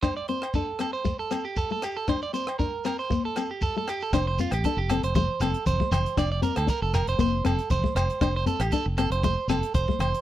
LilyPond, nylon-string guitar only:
\new Staff \with { instrumentName = "Nylon-string guitar" } { \time 4/4 \key f \major \tempo 4 = 118 d'8 c'8 d'8 c'8 a8 c'8 r16 a8 r16 | d'8 c'8 d'8 c'8 bes8 c'8 r16 a8 r16 | d'8 c'8 d'8 c'8 a8 c'8 r16 a8 r16 | d'8 c'8 r4 bes8 c'8 r16 a8 r16 |
d'8 c'8 d'8 c'8 a8 c'8 r16 a8 r16 | }